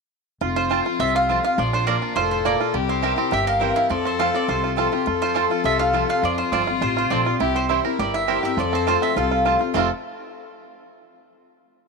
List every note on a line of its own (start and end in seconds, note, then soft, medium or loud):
0.41 0.79 F1 medium
0.41 0.97 F2 medium
0.41 0.55 F4 medium
0.41 1.54 F4 loud
0.56 0.70 F4 medium
0.56 0.83 C5 medium
0.69 0.84 F3 medium
0.69 0.85 A3 medium
0.69 0.80 C4 medium
0.69 0.85 C4 medium
0.69 0.80 F4 medium
0.69 0.85 F4 medium
0.69 0.84 F4 medium
0.69 0.80 C5 loud
0.69 0.80 A5 loud
0.85 1.00 C4 soft
0.85 0.99 F4 medium
0.85 1.14 F4 medium
0.99 1.37 C2 medium
0.99 1.55 C3 medium
0.99 1.41 C4 medium
0.99 1.15 E5 loud
1.15 1.28 F4 medium
1.15 1.43 F5 medium
1.29 1.43 F3 medium
1.29 1.44 A3 medium
1.29 1.38 C4 medium
1.29 1.44 C4 medium
1.29 1.43 F4 medium
1.29 1.38 F4 medium
1.29 1.42 F4 medium
1.29 1.39 C5 medium
1.29 1.39 A5 medium
1.43 1.58 C4 soft
1.43 1.57 F4 medium
1.43 1.58 F4 medium
1.43 1.57 F5 medium
1.58 1.95 A#1 loud
1.58 2.13 A#2 medium
1.58 1.99 F3 medium
1.58 2.18 F4 loud
1.58 1.74 D5 medium
1.73 2.01 D4 medium
1.73 1.86 C5 medium
1.87 2.15 F3 medium
1.87 1.96 A#3 medium
1.87 2.15 A#3 medium
1.87 2.15 D4 medium
1.87 1.96 F4 medium
1.87 2.16 F4 medium
1.87 2.28 A#4 medium
1.87 2.14 D5 medium
1.87 1.96 D5 loud
1.87 1.97 A#5 loud
2.02 2.42 D4 medium
2.16 2.53 F1 medium
2.16 2.43 A2 medium
2.16 2.57 F4 medium
2.16 2.76 A4 loud
2.16 2.30 C5 medium
2.31 2.46 C5 medium
2.45 2.73 A#2 medium
2.45 2.54 A#3 medium
2.45 2.74 A#3 medium
2.45 2.54 F4 medium
2.45 2.55 D5 medium
2.45 2.66 D5 medium
2.45 2.55 A#5 loud
2.60 2.74 F4 medium
2.74 3.12 C2 medium
2.74 3.29 C3 medium
2.74 3.15 G3 medium
2.74 3.62 G4 loud
2.89 3.17 C4 medium
2.89 3.29 C5 medium
3.02 3.17 E3 medium
3.02 3.18 G3 medium
3.02 3.12 C4 medium
3.02 3.18 C4 medium
3.02 3.12 E4 loud
3.02 3.15 E4 medium
3.02 3.44 A#4 medium
3.02 3.12 C5 medium
3.02 3.13 G5 loud
3.16 4.05 C4 medium
3.16 3.32 C4 soft
3.16 3.31 E4 medium
3.31 3.70 G1 medium
3.31 3.87 G2 medium
3.31 3.60 G4 medium
3.31 3.47 E5 medium
3.47 3.88 A#4 medium
3.47 3.74 F5 loud
3.60 3.88 E3 medium
3.60 3.89 G3 medium
3.60 3.70 C4 medium
3.60 3.89 C4 medium
3.60 3.71 E4 medium
3.60 3.89 E4 medium
3.60 3.90 G4 medium
3.60 3.89 A#4 medium
3.60 3.71 C5 medium
3.60 3.71 G5 medium
3.76 3.90 E4 medium
3.76 3.89 F5 loud
3.90 4.45 F2 medium
3.90 4.28 F2 medium
3.90 5.30 F3 medium
3.90 4.73 A4 loud
3.90 4.06 D5 medium
4.05 4.34 C4 medium
4.05 4.19 C5 medium
4.18 4.33 F3 medium
4.18 4.34 A3 medium
4.18 4.29 C4 medium
4.18 4.34 C4 medium
4.18 4.48 F4 medium
4.18 4.29 F4 medium
4.18 4.32 F4 medium
4.18 4.29 C5 loud
4.18 4.34 F5 loud
4.18 4.29 A5 loud
4.34 5.74 C4 medium
4.34 4.49 C4 soft
4.34 4.48 F4 medium
4.34 4.49 D5 medium
4.48 4.86 C2 medium
4.48 5.04 C3 medium
4.48 4.63 F4 medium
4.48 4.90 C5 medium
4.64 4.78 F4 medium
4.76 4.91 F3 medium
4.76 4.92 A3 medium
4.76 4.86 C4 medium
4.76 4.92 C4 medium
4.76 4.87 F4 medium
4.76 4.93 F4 medium
4.76 4.91 F4 medium
4.76 4.94 A4 medium
4.76 4.87 C5 medium
4.76 4.87 A5 medium
4.92 5.07 C4 medium
4.92 5.06 F4 medium
4.92 5.07 F4 medium
4.92 5.08 G4 medium
5.06 5.62 F2 medium
5.06 5.44 F2 medium
5.06 5.21 F4 medium
5.06 6.25 A4 loud
5.22 5.35 F4 medium
5.22 5.49 C5 medium
5.34 5.49 F3 medium
5.34 5.50 A3 medium
5.34 5.45 C4 loud
5.34 5.50 C4 medium
5.34 5.45 F4 medium
5.34 5.50 F4 medium
5.34 5.49 F4 medium
5.34 5.45 C5 loud
5.34 5.45 A5 loud
5.50 5.65 C4 soft
5.50 5.64 F4 medium
5.64 6.02 C2 medium
5.64 6.20 C3 medium
5.64 5.79 F4 medium
5.64 5.79 E5 loud
5.79 5.93 F4 medium
5.79 6.07 F5 medium
5.93 6.08 F3 medium
5.93 6.08 A3 medium
5.93 6.03 C4 medium
5.93 6.09 C4 medium
5.93 6.03 F4 medium
5.93 6.08 F4 medium
5.93 6.07 F4 medium
5.93 6.03 C5 medium
5.93 6.04 A5 medium
6.08 6.23 C4 medium
6.08 6.22 F4 medium
6.08 6.37 F4 medium
6.08 6.23 F5 loud
6.22 6.42 F2 medium
6.22 6.79 F2 medium
6.22 6.65 F3 medium
6.22 7.39 F4 loud
6.22 6.38 D5 medium
6.38 6.52 F4 medium
6.38 6.52 C5 medium
6.52 6.77 G1 medium
6.52 6.67 F3 medium
6.52 6.67 A3 medium
6.52 6.62 C4 medium
6.52 6.68 C4 medium
6.52 6.62 F4 loud
6.52 6.66 F4 medium
6.52 6.62 C5 loud
6.52 6.82 D5 medium
6.52 6.62 A5 medium
6.67 6.82 C4 soft
6.67 6.80 F4 medium
6.67 6.81 F4 medium
6.81 7.06 A1 medium
6.81 7.37 C3 medium
6.81 6.96 F4 medium
6.81 6.96 C5 medium
6.97 7.25 F4 medium
6.97 7.10 C5 medium
7.10 7.36 A#1 medium
7.10 7.25 F3 medium
7.10 7.26 A3 medium
7.10 7.20 C4 medium
7.10 7.88 C4 medium
7.10 7.26 C4 medium
7.10 7.20 F4 medium
7.10 7.24 F4 medium
7.10 7.21 C5 medium
7.10 7.31 D5 medium
7.10 7.21 A5 medium
7.25 7.40 C4 soft
7.25 7.39 F4 medium
7.25 7.40 F4 medium
7.40 7.78 C2 medium
7.40 7.96 C3 medium
7.40 7.68 E4 medium
7.40 7.67 G4 loud
7.55 7.96 G4 medium
7.55 7.83 C5 medium
7.69 7.84 E3 medium
7.69 7.84 G3 medium
7.69 7.79 C4 loud
7.69 7.85 C4 medium
7.69 8.24 E4 medium
7.69 7.79 E4 loud
7.69 8.11 E4 medium
7.69 7.83 E4 medium
7.69 7.79 C5 loud
7.69 7.79 G5 medium
7.85 7.99 C4 soft
7.85 7.98 E4 medium
7.85 8.25 A#4 medium
7.99 8.36 G1 medium
7.99 8.55 G2 medium
7.99 8.40 G4 medium
7.99 8.15 D5 medium
8.14 8.55 E4 medium
8.14 8.41 E5 medium
8.27 8.43 E3 medium
8.27 8.43 G3 medium
8.27 8.37 C4 medium
8.27 8.43 C4 medium
8.27 8.37 E4 medium
8.27 8.54 G4 medium
8.27 8.57 A#4 medium
8.27 8.38 C5 medium
8.27 8.38 G5 loud
8.31 8.43 E4 medium
8.43 8.59 C4 soft
8.43 8.57 E4 medium
8.43 8.57 G4 medium
8.43 8.57 E5 medium
8.57 8.95 F2 loud
8.57 9.14 F2 medium
8.57 8.99 F3 medium
8.57 9.12 A4 loud
8.57 8.73 D5 medium
8.73 9.01 C4 medium
8.73 8.87 C5 medium
8.87 9.15 F3 medium
8.87 9.15 A3 medium
8.87 8.96 C4 medium
8.87 9.15 C4 medium
8.87 8.96 F4 medium
8.87 9.16 F4 medium
8.87 8.96 C5 loud
8.87 9.02 C5 medium
8.87 8.96 A5 loud
9.02 9.43 C4 medium
9.02 9.17 E5 medium
9.16 9.54 C2 medium
9.16 9.72 C3 medium
9.16 9.30 F4 medium
9.16 9.57 A4 medium
9.16 9.58 F5 medium
9.31 9.44 F4 medium
9.45 9.59 F3 medium
9.45 9.60 A3 medium
9.45 9.54 C4 medium
9.45 9.60 C4 medium
9.45 9.59 F4 medium
9.45 9.55 F4 medium
9.45 9.58 F4 medium
9.45 9.55 C5 medium
9.45 9.55 A5 medium
9.59 9.74 C4 medium
9.59 9.73 F4 medium
9.59 9.75 F4 soft
9.74 9.88 F1 medium
9.74 9.86 F2 medium
9.74 9.86 C3 medium
9.74 9.86 F3 medium
9.74 9.88 A3 medium
9.74 9.87 A3 medium
9.74 9.86 C4 medium
9.74 9.87 C4 medium
9.74 9.90 C4 medium
9.74 9.87 F4 medium
9.74 9.87 F4 loud
9.74 9.89 A4 medium
9.74 9.87 C5 medium
9.74 9.89 F5 medium
9.74 9.87 A5 medium
9.78 9.91 F4 medium
9.78 9.92 A4 medium